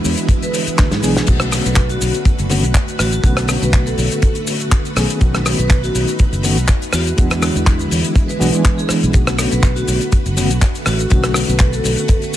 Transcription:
Already playing: D3 E3 G#3 B3 D4 E4 F#4 B4
0.04 E2, open hi-hat, shaker
0.17 closed hi-hat, shaker
0.29 kick, closed hi-hat, shaker
0.42 B4, closed hi-hat, shaker
0.53 open hi-hat, shaker
0.67 muted fingered electric bass stroke, closed hi-hat, shaker
0.78 D2, kick, snare, clap, closed hi-hat, shaker
0.91 G#2 G#4, snare, closed hi-hat, shaker
1.02 B1 E3 G#3 B3 D4 G#4, open hi-hat, shaker
1.16 snare, closed hi-hat, shaker
1.26 B1 D3 A3 B3 C#4 F#4, kick, closed hi-hat, crash, shaker
1.40 cross-stick, closed hi-hat, shaker
1.51 cross-stick, open hi-hat, shaker
1.65 B1 B4, closed hi-hat, shaker
1.76 kick, clap, closed hi-hat, shaker
1.89 F#4, closed hi-hat, shaker
2.01 B1 F#4, open hi-hat, shaker
2.14 closed hi-hat, shaker
2.25 kick, closed hi-hat, shaker
2.39 F#1, closed hi-hat, shaker
2.50 D3 A3 B3 C#4 F#4, open hi-hat, shaker
2.63 B1, closed hi-hat, shaker
2.74 kick, clap, closed hi-hat, shaker
2.88 closed hi-hat, shaker
2.99 A1 F#4, cross-stick, open hi-hat, shaker
3.12 F#4, closed hi-hat, shaker
3.23 B1 D3 A3 B3 C#4 F#4, kick, closed hi-hat, shaker
3.37 cross-stick, closed hi-hat, shaker
3.48 cross-stick, open hi-hat, shaker
3.62 B1 B4, closed hi-hat, shaker
3.73 B4, kick, clap, closed hi-hat, shaker
3.86 A4, closed hi-hat, shaker
3.98 B1, open hi-hat, shaker
4.11 closed hi-hat, shaker
4.22 kick, closed hi-hat, shaker
4.35 closed hi-hat, shaker
4.47 open hi-hat, shaker
4.60 closed hi-hat, shaker
4.72 kick, clap, closed hi-hat, shaker
4.85 closed hi-hat, shaker
4.96 B1 D#3 A3 B3 C#4 D#4 G#4, cross-stick, open hi-hat, shaker
5.10 closed hi-hat, shaker
5.20 B1 D#3 A3 B3 C#4 F#4, kick, closed hi-hat, shaker
5.35 cross-stick, closed hi-hat, shaker
5.45 cross-stick, open hi-hat, shaker
5.59 B1 B4, closed hi-hat, shaker
5.70 kick, clap, closed hi-hat, shaker
5.83 F#4, closed hi-hat, shaker
5.94 B1 F#4, open hi-hat, shaker
6.08 closed hi-hat, shaker
6.19 kick, closed hi-hat, shaker
6.33 F#1, closed hi-hat, shaker
6.43 D#3 A3 B3 C#4 F#4, open hi-hat, shaker
6.57 B1, closed hi-hat, shaker
6.68 kick, clap, closed hi-hat, shaker
6.82 closed hi-hat, shaker
6.93 E2 D3 G#3 E4 F#4, cross-stick, open hi-hat, shaker
7.06 F#4, closed hi-hat, shaker
7.17 E2 E3 G#3 B3 D4 F#4, kick, closed hi-hat, shaker
7.30 cross-stick, closed hi-hat, shaker
7.42 F#4, cross-stick, open hi-hat, shaker
7.56 E2, closed hi-hat, shaker
7.67 kick, clap, closed hi-hat, shaker
7.79 closed hi-hat, shaker
7.91 E2, open hi-hat, shaker
8.04 closed hi-hat, shaker
8.16 kick, closed hi-hat, shaker
8.28 B4, closed hi-hat, shaker
8.39 B1 E3 G#3 B3 D4 F#4, open hi-hat, shaker
8.53 E3 G#3 B3 D4 E4, closed hi-hat, shaker
8.65 kick, clap, closed hi-hat, shaker
8.78 G#4, closed hi-hat, shaker
8.89 muted fingered electric bass stroke, cross-stick, open hi-hat, shaker
9.03 B1, closed hi-hat, shaker
9.13 B1 D3 A3 B3 C#4 F#4 B4, kick, closed hi-hat, shaker
9.27 cross-stick, closed hi-hat, shaker
9.39 cross-stick, open hi-hat, shaker
9.51 B1 B4, closed hi-hat, shaker
9.63 kick, clap, closed hi-hat, shaker
9.76 F#4, closed hi-hat, shaker
9.87 B1 F#4, open hi-hat, shaker
10.01 closed hi-hat, shaker
10.12 kick, closed hi-hat, shaker
10.26 F#1, closed hi-hat, shaker
10.36 D3 A3 B3 C#4 F#4, open hi-hat, shaker
10.50 B1, closed hi-hat, shaker
10.62 kick, clap, closed hi-hat, shaker
10.75 closed hi-hat, shaker
10.86 A1 F#4, cross-stick, open hi-hat, shaker
10.98 F#4, closed hi-hat, shaker
11.10 B1 D3 A3 B3 C#4 F#4, kick, closed hi-hat, shaker
11.24 cross-stick, closed hi-hat, shaker
11.34 cross-stick, open hi-hat, shaker
11.48 B1 B4, closed hi-hat, shaker
11.59 B4, kick, clap, closed hi-hat, shaker
11.73 A4, closed hi-hat, shaker
11.84 B1, open hi-hat, shaker
11.98 closed hi-hat, shaker
12.08 kick, closed hi-hat, shaker
12.22 closed hi-hat, shaker
12.34 shaker

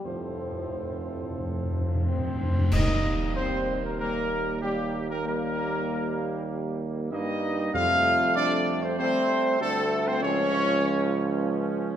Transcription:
0.03 F1 F2 A2 F3 C4 A4 C5
0.12 F2
0.19 F2
0.28 F2
0.36 F2
0.44 F2
0.52 F2
0.60 F2
0.67 F2
0.75 F2
0.83 F2
0.90 F2
0.98 F2
1.06 F2
1.14 F2
1.22 F2
1.30 F2
1.37 F2
1.46 F2
1.54 F2
1.63 F2
1.71 F2
1.78 F2
1.86 F2
1.95 F2
2.02 F2 C4 C5
2.11 F2
2.19 F2
2.27 F2
2.35 F2
2.43 F2
2.51 F2
2.58 F2
2.71 D#2 G3 A#3 D#4 D#5, concert bass drum, crash
3.36 C4 C5
3.83 A#3 A#4
3.99 G3 A#3 A#4
4.62 G3 A#3 G4
5.09 A#3 A#4
5.24 G3 A#3 A#4
7.11 G2 G3 A#3 D#4 D#5
7.74 F2 G3 A3 F4 F5
8.36 D4 D5
8.83 C4 C5
8.98 G3 A3 C4 C5
9.60 D2 G3 A3 A4
10.06 C4 C5
10.20 C#2 F3 C#4 C#5

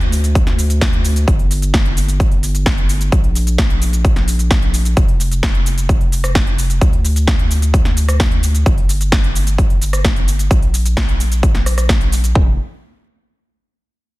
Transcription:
Already playing: D2
0.01 closed hi-hat
0.12 open hi-hat, shaker
0.24 closed hi-hat, shaker
0.35 kick, closed hi-hat, shaker
0.47 snare, closed hi-hat
0.59 open hi-hat, shaker
0.70 closed hi-hat, shaker
0.81 kick, snare, open hi-hat, shaker
0.93 closed hi-hat
1.05 open hi-hat, shaker
1.16 closed hi-hat, shaker
1.28 G1, kick, closed hi-hat, shaker
1.39 closed hi-hat
1.51 open hi-hat, shaker
1.62 closed hi-hat, shaker
1.74 kick, snare, closed hi-hat, shaker
1.85 closed hi-hat
1.97 open hi-hat, shaker
2.08 closed hi-hat, shaker
2.20 kick, closed hi-hat, shaker
2.32 closed hi-hat
2.43 open hi-hat, shaker
2.55 closed hi-hat, shaker
2.66 kick, snare, closed hi-hat, shaker
2.78 closed hi-hat
2.89 open hi-hat, shaker
3.01 closed hi-hat, shaker
3.12 A#1, kick, closed hi-hat, shaker
3.24 closed hi-hat
3.35 open hi-hat, shaker
3.47 closed hi-hat, shaker
3.58 kick, snare, closed hi-hat, shaker
3.70 closed hi-hat
3.82 open hi-hat, shaker
3.93 closed hi-hat, shaker
4.05 kick, closed hi-hat, shaker
4.16 snare, closed hi-hat
4.28 open hi-hat, shaker
4.39 closed hi-hat, shaker
4.51 kick, snare, open hi-hat, shaker
4.62 closed hi-hat
4.74 open hi-hat, shaker
4.85 closed hi-hat, shaker
4.97 F1, kick, closed hi-hat, shaker
5.08 closed hi-hat
5.20 open hi-hat, shaker
5.32 closed hi-hat, shaker
5.43 kick, snare, closed hi-hat, shaker
5.55 closed hi-hat
5.66 open hi-hat, shaker
5.78 closed hi-hat, shaker
5.89 kick, closed hi-hat, shaker
6.01 closed hi-hat
6.12 open hi-hat, shaker
6.24 cross-stick, closed hi-hat, shaker
6.35 kick, snare, closed hi-hat, shaker
6.47 closed hi-hat
6.58 open hi-hat, shaker
6.70 closed hi-hat, shaker
6.81 D2, kick, closed hi-hat, shaker
6.93 closed hi-hat
7.05 open hi-hat, shaker
7.16 closed hi-hat, shaker
7.27 kick, snare, closed hi-hat, shaker
7.39 closed hi-hat
7.51 open hi-hat, shaker
7.62 closed hi-hat, shaker
7.74 kick, closed hi-hat, shaker
7.85 snare, closed hi-hat
7.97 open hi-hat, shaker
8.09 cross-stick, closed hi-hat, shaker
8.20 kick, snare, open hi-hat, shaker
8.31 closed hi-hat
8.43 open hi-hat, shaker
8.55 closed hi-hat, shaker
8.66 G1, kick, closed hi-hat, shaker
8.78 closed hi-hat
8.89 open hi-hat, shaker
9.01 closed hi-hat, shaker
9.12 kick, snare, closed hi-hat, shaker
9.24 closed hi-hat
9.35 open hi-hat, shaker
9.47 closed hi-hat, shaker
9.58 kick, closed hi-hat, shaker
9.70 closed hi-hat
9.82 open hi-hat, shaker
9.93 cross-stick, closed hi-hat, shaker
10.05 kick, snare, closed hi-hat, shaker
10.16 closed hi-hat
10.28 open hi-hat, shaker
10.39 closed hi-hat, shaker
10.51 A#1, kick, closed hi-hat, shaker
10.62 closed hi-hat
10.74 open hi-hat, shaker
10.86 closed hi-hat, shaker
10.97 kick, snare, closed hi-hat, shaker
11.09 closed hi-hat
11.20 open hi-hat, shaker
11.32 closed hi-hat, shaker
11.43 kick, closed hi-hat, shaker
11.55 snare, closed hi-hat
11.66 cross-stick, open hi-hat, shaker
11.78 cross-stick, closed hi-hat, shaker
11.89 kick, snare, open hi-hat, shaker
12.01 closed hi-hat
12.12 open hi-hat, shaker
12.24 closed hi-hat, shaker
12.35 F1, kick

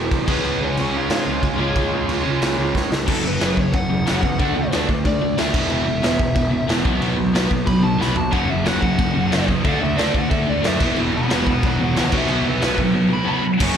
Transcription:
Already playing: E1 E2 B2 E3
0.11 C2, kick, crash
0.27 C#2 C#3 G#3 B3 C#4, kick, crash
0.32 B4
0.44 C#2, crash
0.61 C#2 C#4 C#5
0.77 C#2 C#4 C#5, crash
0.92 C#3 G#3 C#4
0.97 F4 F5
1.10 G#2 F4, snare, crash
1.14 F5
1.26 C#2
1.43 C#2, kick, crash
1.57 C#2 C#3 G#3 C#4
1.76 C#2, kick, crash
1.93 C#2
2.08 C#2, crash
2.23 C#2 G#3 C#4
2.27 C#3
2.42 C#2, snare, crash
2.58 C#2
2.75 C#2, kick, snare
2.92 C#2, snare
3.06 F#1 F#2 C#3 F#3 A4, kick, crash
3.24 F#1 F#2 C#3 B4
3.40 F#1 F#2 C#3 F#3, snare, crash
3.57 F#1 F#2 C#3 C#5, kick
3.73 F#1 F#2 C#3 F#5, kick, crash
3.90 F#1 F#2 C#3
4.06 F#1 F#2 C#3 F#3, snare, crash
4.23 E2 F#2 C#3, kick
4.39 D2 D3 A3 D4, kick, crash
4.56 D2 D3 A3
4.72 D2 D3 A3 D4, snare, crash
4.89 D2 D3 A3, kick
5.05 D2 D3 A3 D5, kick, crash
5.21 D3 A3
5.37 D2 D3 A3 D4 E5, snare, crash
5.54 E1 E2 B2 E3, kick, crash
5.70 E1 E2 B2 E3 E5, crash
5.86 E1 E2 B2
6.02 E1 E2 B2 E3 E5, snare, crash
6.19 E2 B2, kick
6.36 E1 E2 B2, kick, crash
6.52 E1 E2 B2
6.68 E1 E2 B2 E3, snare, crash
6.84 B1 B2 F#3 B3, kick
7.01 B1 B2 F#3 B3, crash
7.17 B1 B2 F#3
7.34 B1 B2 F#3 B3, snare, crash
7.49 B1 B2 F#3, kick
7.67 B1 B2 F#3 B5, kick, crash
7.83 B2 F#3 A5
7.99 B1 B2 F#3 B3 B5, snare
8.15 B1 B2 F#3 A5, floor tom
8.31 F#1 F#2 C#3 F#3 F#5, kick, crash
8.48 F#1 F#2 C#3 E5
8.64 F#1 F#2 C#3 F#3 F#5, snare, crash
8.81 F#1 F#2 C#3 F#5, kick
8.98 F#1 F#2 C#3, kick, crash
9.15 F#1 F#2 C#3
9.31 F#1 F#2 C#3 F#3, snare, crash
9.48 E2 F#2 C#3, kick
9.64 D2 D3 A3 D4 F#5, kick, crash
9.81 D2 D3 A3 E5
9.96 D2 D3 A3 D4 D5, snare, crash
10.13 D2 D3 A3 F#5, kick
10.29 D2 D3 A3 E5, kick, crash
10.47 D3 A3 D5
10.64 F#2 D3 A3 D4 E5, snare, crash
10.80 E1 E2 B2 E3, kick, crash
10.96 E1 E2 B2 E3, crash
11.13 E1 E2 B2 F#5
11.17 B5
11.29 E1 E2 B2 E3 F#5 B5, snare, crash
11.47 E1 E2 B2 F#5, kick
11.51 B5
11.63 E1 E2 B2 C#5, kick, crash
11.67 F#5
11.79 E1 E2 B2 C#5
11.84 F#5
11.95 C#2 E2 B2 E3, snare, crash
11.99 C#5 F#5
12.12 B1 B2 F#3 B3, kick, crash
12.17 B4 E5
12.28 B1 B2 F#3 B3 B4, crash
12.33 E5
12.46 B1 B2 F#3 B4 E5
12.61 B1 B2 F#3 B3 B4, snare, crash
12.78 G#1 B2 F#3, kick
12.94 B2 F#3
13.10 B2 F#3 B5
13.25 B2 F#3 B3 B5
13.42 B2 F#3
13.59 F#1 F#2 C#3 F#3 C#4 C#5, kick, crash

